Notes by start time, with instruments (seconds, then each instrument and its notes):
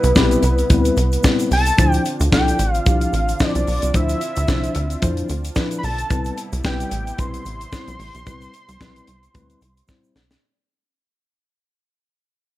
Already playing: analog synth pad C3 G3 B3 E4, analog synth lead B4
0.04 analog synth bass C2, closed hi-hat, shaker
0.15 analog synth bass B1, tine electric piano G3 B3 C4 E4 G4, kick, snare, shaker
0.31 closed hi-hat, shaker
0.43 analog synth bass C2, closed hi-hat, shaker
0.58 closed hi-hat, shaker
0.70 analog synth bass D2, tine electric piano G3 B3 C4 E4 B4, kick, closed hi-hat, shaker
0.85 closed hi-hat, shaker
0.97 analog synth bass C2, closed hi-hat, shaker
1.12 closed hi-hat, shaker
1.23 tine electric piano G3 B3 C4 E4 B4, kick, snare, shaker
1.39 closed hi-hat, shaker
1.51 analog synth bass C2, analog synth lead A5, open hi-hat, shaker
1.66 closed hi-hat, shaker
1.77 analog synth bass D2, analog synth pad D3 C4 D4 F4, tine electric piano F3 D4 E4 C5, kick, closed hi-hat, shaker
1.93 closed hi-hat, shaker
2.05 closed hi-hat, shaker
2.20 analog synth bass D2, closed hi-hat, shaker
2.32 analog synth bass C2, tine electric piano F3 D4 E4 A4, analog synth lead G5, kick, snare, shaker
2.48 closed hi-hat, shaker
2.59 analog synth bass A1, closed hi-hat, shaker
2.72 analog synth lead F5, closed hi-hat, shaker
2.86 analog synth bass C2, tine electric piano F3 D4 E4 G4, analog synth lead F5, kick, closed hi-hat, shaker
3.01 closed hi-hat, shaker
3.13 analog synth bass A1, closed hi-hat, shaker
3.29 closed hi-hat, shaker
3.39 tine electric piano F3 D4 E4 C5, analog synth lead D5, kick, snare, shaker
3.55 analog synth bass C2, closed hi-hat, shaker
3.67 analog synth bass B1, open hi-hat, shaker
3.82 analog synth bass C2, closed hi-hat, shaker
3.94 analog synth bass D2, tine electric piano F3 D4 E4 C5, analog synth pad D4, analog synth lead E5, kick, closed hi-hat, shaker
4.09 closed hi-hat, shaker
4.21 closed hi-hat, shaker
4.36 analog synth bass D2, closed hi-hat, shaker
4.48 analog synth bass C2, tine electric piano F3 D4 E4 C5, kick, snare, shaker
4.64 closed hi-hat, shaker
4.75 analog synth bass D2, closed hi-hat, shaker
4.90 closed hi-hat, shaker
5.02 analog synth bass F2, tine electric piano F3 D4 E4 C5, kick, closed hi-hat, shaker
5.17 closed hi-hat, shaker
5.29 analog synth bass D2, closed hi-hat, shaker
5.45 closed hi-hat, shaker
5.55 tine electric piano F3 D4 E4 B4, kick, snare, shaker
5.71 closed hi-hat, shaker
5.78 analog synth lead B5
5.83 analog synth bass B1, analog synth lead A5, open hi-hat, shaker
5.98 closed hi-hat, shaker
6.10 analog synth bass C2, analog synth pad C3 G3 B3 E4, tine electric piano G3 C4 E4 B4, kick, closed hi-hat, shaker
6.25 closed hi-hat, shaker
6.38 closed hi-hat, shaker
6.53 analog synth bass C2, closed hi-hat, shaker
6.64 analog synth bass B1, tine electric piano G3 C4 E4 B4, analog synth lead G5, kick, snare, shaker
6.80 closed hi-hat, shaker
6.91 analog synth bass A1, closed hi-hat, shaker
7.07 closed hi-hat, shaker
7.18 analog synth bass B1, tine electric piano G3 C4 E4 B4, analog synth lead C6, kick, closed hi-hat, shaker
7.34 closed hi-hat, shaker
7.46 analog synth bass A1, closed hi-hat, shaker
7.61 closed hi-hat, shaker
7.72 tine electric piano G3 C4 E4 C5, kick, snare, shaker
7.88 analog synth bass B1, closed hi-hat, shaker
7.99 analog synth bass A1, open hi-hat, shaker
8.15 analog synth bass B1, closed hi-hat, shaker
8.26 analog synth bass C2, tine electric piano G3 C4 E4 B4, kick, closed hi-hat, shaker
8.41 closed hi-hat, shaker
8.54 closed hi-hat, shaker
8.68 analog synth bass C2, closed hi-hat, shaker
8.80 analog synth bass B1, tine electric piano G3 C4 E4 B4, kick, snare, shaker
8.96 closed hi-hat, shaker
9.07 analog synth bass C2, closed hi-hat, shaker
9.23 closed hi-hat, shaker
9.34 analog synth bass D2, tine electric piano G3 C4 E4 B4, kick, closed hi-hat, shaker
9.50 closed hi-hat, shaker
9.62 analog synth bass C2, closed hi-hat, shaker
9.77 closed hi-hat, shaker
9.88 tine electric piano G3 C4 E4 C5, kick, snare, shaker
10.04 shaker
10.15 analog synth bass B1, snare, shaker
10.31 snare, shaker